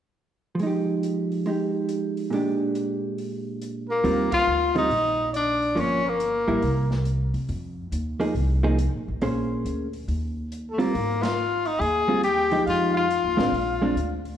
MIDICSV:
0, 0, Header, 1, 6, 480
1, 0, Start_track
1, 0, Key_signature, -3, "major"
1, 0, Tempo, 431034
1, 659, Time_signature, 4, 2, 24, 8
1, 16002, End_track
2, 0, Start_track
2, 0, Title_t, "Trumpet"
2, 0, Program_c, 0, 56
2, 4327, Note_on_c, 0, 70, 62
2, 4776, Note_off_c, 0, 70, 0
2, 4805, Note_on_c, 0, 77, 79
2, 5255, Note_off_c, 0, 77, 0
2, 5287, Note_on_c, 0, 75, 70
2, 5892, Note_off_c, 0, 75, 0
2, 5938, Note_on_c, 0, 74, 68
2, 6420, Note_on_c, 0, 73, 68
2, 6436, Note_off_c, 0, 74, 0
2, 6751, Note_on_c, 0, 70, 62
2, 6767, Note_off_c, 0, 73, 0
2, 7702, Note_off_c, 0, 70, 0
2, 11918, Note_on_c, 0, 69, 49
2, 12014, Note_on_c, 0, 70, 65
2, 12031, Note_off_c, 0, 69, 0
2, 12494, Note_on_c, 0, 77, 73
2, 12510, Note_off_c, 0, 70, 0
2, 12989, Note_on_c, 0, 75, 70
2, 13006, Note_off_c, 0, 77, 0
2, 13145, Note_on_c, 0, 80, 81
2, 13161, Note_off_c, 0, 75, 0
2, 13622, Note_off_c, 0, 80, 0
2, 13629, Note_on_c, 0, 79, 76
2, 14073, Note_off_c, 0, 79, 0
2, 14101, Note_on_c, 0, 77, 75
2, 14394, Note_off_c, 0, 77, 0
2, 14411, Note_on_c, 0, 77, 73
2, 15809, Note_off_c, 0, 77, 0
2, 16002, End_track
3, 0, Start_track
3, 0, Title_t, "Tenor saxophone"
3, 0, Program_c, 1, 66
3, 4356, Note_on_c, 1, 58, 73
3, 4792, Note_off_c, 1, 58, 0
3, 4833, Note_on_c, 1, 65, 88
3, 5270, Note_off_c, 1, 65, 0
3, 5325, Note_on_c, 1, 63, 89
3, 5911, Note_off_c, 1, 63, 0
3, 5969, Note_on_c, 1, 62, 85
3, 6461, Note_on_c, 1, 61, 80
3, 6478, Note_off_c, 1, 62, 0
3, 6780, Note_on_c, 1, 58, 69
3, 6797, Note_off_c, 1, 61, 0
3, 7717, Note_off_c, 1, 58, 0
3, 11948, Note_on_c, 1, 57, 54
3, 12037, Note_on_c, 1, 58, 78
3, 12053, Note_off_c, 1, 57, 0
3, 12504, Note_on_c, 1, 65, 80
3, 12521, Note_off_c, 1, 58, 0
3, 12992, Note_on_c, 1, 63, 82
3, 13009, Note_off_c, 1, 65, 0
3, 13151, Note_on_c, 1, 68, 97
3, 13168, Note_off_c, 1, 63, 0
3, 13622, Note_off_c, 1, 68, 0
3, 13629, Note_on_c, 1, 67, 93
3, 14073, Note_off_c, 1, 67, 0
3, 14133, Note_on_c, 1, 65, 84
3, 14411, Note_off_c, 1, 65, 0
3, 14444, Note_on_c, 1, 65, 86
3, 15826, Note_off_c, 1, 65, 0
3, 16002, End_track
4, 0, Start_track
4, 0, Title_t, "Hollow-body jazz guitar"
4, 0, Program_c, 2, 26
4, 613, Note_on_c, 2, 53, 46
4, 665, Note_on_c, 2, 56, 46
4, 700, Note_on_c, 2, 63, 53
4, 744, Note_on_c, 2, 67, 48
4, 1611, Note_off_c, 2, 56, 0
4, 1625, Note_off_c, 2, 63, 0
4, 1625, Note_on_c, 2, 56, 34
4, 1638, Note_on_c, 2, 63, 33
4, 1641, Note_off_c, 2, 67, 0
4, 1655, Note_on_c, 2, 67, 39
4, 2556, Note_off_c, 2, 53, 0
4, 2566, Note_on_c, 2, 46, 46
4, 2579, Note_off_c, 2, 56, 0
4, 2589, Note_off_c, 2, 63, 0
4, 2592, Note_on_c, 2, 56, 46
4, 2597, Note_off_c, 2, 67, 0
4, 2605, Note_on_c, 2, 62, 52
4, 2622, Note_on_c, 2, 67, 50
4, 4493, Note_off_c, 2, 46, 0
4, 4494, Note_off_c, 2, 56, 0
4, 4498, Note_on_c, 2, 51, 49
4, 4499, Note_on_c, 2, 55, 54
4, 4500, Note_off_c, 2, 62, 0
4, 4505, Note_on_c, 2, 60, 52
4, 4506, Note_off_c, 2, 67, 0
4, 4510, Note_on_c, 2, 65, 54
4, 4781, Note_off_c, 2, 51, 0
4, 4781, Note_off_c, 2, 55, 0
4, 4784, Note_off_c, 2, 60, 0
4, 4787, Note_off_c, 2, 65, 0
4, 5291, Note_on_c, 2, 51, 46
4, 5297, Note_on_c, 2, 60, 51
4, 5298, Note_on_c, 2, 55, 54
4, 5305, Note_on_c, 2, 65, 58
4, 5442, Note_off_c, 2, 51, 0
4, 5445, Note_off_c, 2, 55, 0
4, 5445, Note_off_c, 2, 60, 0
4, 5449, Note_off_c, 2, 65, 0
4, 6408, Note_on_c, 2, 53, 50
4, 6420, Note_on_c, 2, 58, 48
4, 6420, Note_on_c, 2, 61, 58
4, 6696, Note_off_c, 2, 53, 0
4, 6702, Note_off_c, 2, 58, 0
4, 6702, Note_off_c, 2, 61, 0
4, 7212, Note_on_c, 2, 55, 60
4, 7217, Note_on_c, 2, 58, 65
4, 7221, Note_on_c, 2, 64, 67
4, 7362, Note_off_c, 2, 55, 0
4, 7365, Note_off_c, 2, 58, 0
4, 7367, Note_off_c, 2, 64, 0
4, 9128, Note_on_c, 2, 53, 58
4, 9129, Note_on_c, 2, 58, 57
4, 9139, Note_on_c, 2, 63, 63
4, 9140, Note_on_c, 2, 68, 66
4, 9281, Note_off_c, 2, 53, 0
4, 9282, Note_off_c, 2, 58, 0
4, 9287, Note_off_c, 2, 63, 0
4, 9287, Note_off_c, 2, 68, 0
4, 9614, Note_on_c, 2, 53, 61
4, 9619, Note_on_c, 2, 58, 64
4, 9624, Note_on_c, 2, 63, 65
4, 9626, Note_on_c, 2, 68, 60
4, 9764, Note_off_c, 2, 53, 0
4, 9767, Note_off_c, 2, 58, 0
4, 9769, Note_off_c, 2, 63, 0
4, 9771, Note_off_c, 2, 68, 0
4, 10265, Note_on_c, 2, 58, 48
4, 10268, Note_on_c, 2, 61, 50
4, 10272, Note_on_c, 2, 68, 51
4, 10279, Note_on_c, 2, 72, 60
4, 10995, Note_off_c, 2, 58, 0
4, 10996, Note_off_c, 2, 61, 0
4, 10999, Note_off_c, 2, 68, 0
4, 11002, Note_off_c, 2, 72, 0
4, 12007, Note_on_c, 2, 55, 49
4, 12011, Note_on_c, 2, 60, 52
4, 12016, Note_on_c, 2, 65, 53
4, 12162, Note_off_c, 2, 55, 0
4, 12164, Note_off_c, 2, 60, 0
4, 12166, Note_off_c, 2, 65, 0
4, 13452, Note_on_c, 2, 55, 52
4, 13459, Note_on_c, 2, 60, 53
4, 13469, Note_on_c, 2, 65, 52
4, 13605, Note_off_c, 2, 55, 0
4, 13608, Note_off_c, 2, 60, 0
4, 13613, Note_off_c, 2, 65, 0
4, 13939, Note_on_c, 2, 53, 54
4, 13945, Note_on_c, 2, 56, 56
4, 13949, Note_on_c, 2, 63, 55
4, 13953, Note_on_c, 2, 67, 56
4, 14551, Note_off_c, 2, 53, 0
4, 14555, Note_off_c, 2, 56, 0
4, 14556, Note_off_c, 2, 63, 0
4, 14559, Note_off_c, 2, 67, 0
4, 14888, Note_on_c, 2, 56, 51
4, 14895, Note_on_c, 2, 60, 55
4, 14902, Note_on_c, 2, 62, 61
4, 15043, Note_off_c, 2, 56, 0
4, 15046, Note_off_c, 2, 60, 0
4, 15050, Note_off_c, 2, 62, 0
4, 15386, Note_on_c, 2, 56, 50
4, 15394, Note_on_c, 2, 60, 51
4, 15399, Note_on_c, 2, 62, 63
4, 15532, Note_off_c, 2, 56, 0
4, 15535, Note_off_c, 2, 60, 0
4, 15538, Note_off_c, 2, 62, 0
4, 16002, End_track
5, 0, Start_track
5, 0, Title_t, "Upright bass"
5, 0, Program_c, 3, 32
5, 4495, Note_on_c, 3, 39, 71
5, 4943, Note_off_c, 3, 39, 0
5, 4979, Note_on_c, 3, 38, 65
5, 5425, Note_off_c, 3, 38, 0
5, 5456, Note_on_c, 3, 34, 78
5, 6373, Note_off_c, 3, 34, 0
5, 6415, Note_on_c, 3, 31, 74
5, 7166, Note_off_c, 3, 31, 0
5, 7213, Note_on_c, 3, 34, 62
5, 7368, Note_off_c, 3, 34, 0
5, 7375, Note_on_c, 3, 36, 83
5, 8127, Note_off_c, 3, 36, 0
5, 8170, Note_on_c, 3, 48, 62
5, 8327, Note_off_c, 3, 48, 0
5, 8336, Note_on_c, 3, 41, 75
5, 8785, Note_off_c, 3, 41, 0
5, 8814, Note_on_c, 3, 39, 69
5, 9264, Note_off_c, 3, 39, 0
5, 9295, Note_on_c, 3, 36, 83
5, 9894, Note_off_c, 3, 36, 0
5, 9950, Note_on_c, 3, 34, 57
5, 10095, Note_off_c, 3, 34, 0
5, 10113, Note_on_c, 3, 33, 63
5, 10257, Note_off_c, 3, 33, 0
5, 10267, Note_on_c, 3, 34, 77
5, 10711, Note_off_c, 3, 34, 0
5, 10744, Note_on_c, 3, 38, 66
5, 11190, Note_off_c, 3, 38, 0
5, 11224, Note_on_c, 3, 39, 71
5, 12139, Note_off_c, 3, 39, 0
5, 12192, Note_on_c, 3, 32, 75
5, 13104, Note_off_c, 3, 32, 0
5, 13139, Note_on_c, 3, 39, 79
5, 14057, Note_off_c, 3, 39, 0
5, 14105, Note_on_c, 3, 41, 73
5, 14700, Note_off_c, 3, 41, 0
5, 14745, Note_on_c, 3, 39, 53
5, 14890, Note_off_c, 3, 39, 0
5, 14896, Note_on_c, 3, 33, 60
5, 15049, Note_off_c, 3, 33, 0
5, 15054, Note_on_c, 3, 34, 76
5, 15505, Note_off_c, 3, 34, 0
5, 15539, Note_on_c, 3, 38, 65
5, 15987, Note_off_c, 3, 38, 0
5, 16002, End_track
6, 0, Start_track
6, 0, Title_t, "Drums"
6, 661, Note_on_c, 9, 46, 32
6, 772, Note_off_c, 9, 46, 0
6, 1149, Note_on_c, 9, 42, 43
6, 1261, Note_off_c, 9, 42, 0
6, 1467, Note_on_c, 9, 46, 28
6, 1578, Note_off_c, 9, 46, 0
6, 1623, Note_on_c, 9, 46, 33
6, 1734, Note_off_c, 9, 46, 0
6, 2101, Note_on_c, 9, 42, 41
6, 2213, Note_off_c, 9, 42, 0
6, 2419, Note_on_c, 9, 46, 28
6, 2530, Note_off_c, 9, 46, 0
6, 2590, Note_on_c, 9, 46, 34
6, 2702, Note_off_c, 9, 46, 0
6, 3064, Note_on_c, 9, 42, 41
6, 3175, Note_off_c, 9, 42, 0
6, 3545, Note_on_c, 9, 46, 34
6, 3656, Note_off_c, 9, 46, 0
6, 4026, Note_on_c, 9, 42, 41
6, 4137, Note_off_c, 9, 42, 0
6, 4506, Note_on_c, 9, 46, 40
6, 4617, Note_off_c, 9, 46, 0
6, 4811, Note_on_c, 9, 51, 66
6, 4815, Note_on_c, 9, 36, 69
6, 4923, Note_off_c, 9, 51, 0
6, 4926, Note_off_c, 9, 36, 0
6, 5296, Note_on_c, 9, 46, 32
6, 5408, Note_off_c, 9, 46, 0
6, 5468, Note_on_c, 9, 46, 39
6, 5580, Note_off_c, 9, 46, 0
6, 5948, Note_on_c, 9, 42, 47
6, 6060, Note_off_c, 9, 42, 0
6, 6263, Note_on_c, 9, 46, 31
6, 6374, Note_off_c, 9, 46, 0
6, 6429, Note_on_c, 9, 46, 41
6, 6540, Note_off_c, 9, 46, 0
6, 6905, Note_on_c, 9, 42, 46
6, 7017, Note_off_c, 9, 42, 0
6, 7376, Note_on_c, 9, 46, 39
6, 7487, Note_off_c, 9, 46, 0
6, 7694, Note_on_c, 9, 38, 37
6, 7806, Note_off_c, 9, 38, 0
6, 7855, Note_on_c, 9, 42, 46
6, 7966, Note_off_c, 9, 42, 0
6, 8176, Note_on_c, 9, 46, 33
6, 8287, Note_off_c, 9, 46, 0
6, 8338, Note_on_c, 9, 46, 39
6, 8450, Note_off_c, 9, 46, 0
6, 8824, Note_on_c, 9, 42, 51
6, 8935, Note_off_c, 9, 42, 0
6, 9139, Note_on_c, 9, 46, 35
6, 9250, Note_off_c, 9, 46, 0
6, 9306, Note_on_c, 9, 46, 40
6, 9418, Note_off_c, 9, 46, 0
6, 9784, Note_on_c, 9, 42, 48
6, 9895, Note_off_c, 9, 42, 0
6, 10262, Note_on_c, 9, 46, 39
6, 10373, Note_off_c, 9, 46, 0
6, 10754, Note_on_c, 9, 42, 48
6, 10866, Note_off_c, 9, 42, 0
6, 11062, Note_on_c, 9, 46, 34
6, 11174, Note_off_c, 9, 46, 0
6, 11230, Note_on_c, 9, 46, 41
6, 11341, Note_off_c, 9, 46, 0
6, 11714, Note_on_c, 9, 42, 48
6, 11825, Note_off_c, 9, 42, 0
6, 12023, Note_on_c, 9, 46, 32
6, 12134, Note_off_c, 9, 46, 0
6, 12194, Note_on_c, 9, 46, 40
6, 12306, Note_off_c, 9, 46, 0
6, 12507, Note_on_c, 9, 38, 73
6, 12508, Note_on_c, 9, 51, 62
6, 12618, Note_off_c, 9, 38, 0
6, 12620, Note_off_c, 9, 51, 0
6, 12978, Note_on_c, 9, 46, 31
6, 13090, Note_off_c, 9, 46, 0
6, 13158, Note_on_c, 9, 46, 37
6, 13269, Note_off_c, 9, 46, 0
6, 13624, Note_on_c, 9, 42, 46
6, 13735, Note_off_c, 9, 42, 0
6, 13935, Note_on_c, 9, 46, 32
6, 14046, Note_off_c, 9, 46, 0
6, 14112, Note_on_c, 9, 46, 42
6, 14224, Note_off_c, 9, 46, 0
6, 14594, Note_on_c, 9, 42, 48
6, 14705, Note_off_c, 9, 42, 0
6, 14908, Note_on_c, 9, 38, 49
6, 14909, Note_on_c, 9, 46, 34
6, 15019, Note_off_c, 9, 38, 0
6, 15020, Note_off_c, 9, 46, 0
6, 15084, Note_on_c, 9, 46, 40
6, 15195, Note_off_c, 9, 46, 0
6, 15559, Note_on_c, 9, 42, 45
6, 15670, Note_off_c, 9, 42, 0
6, 15873, Note_on_c, 9, 46, 32
6, 15984, Note_off_c, 9, 46, 0
6, 16002, End_track
0, 0, End_of_file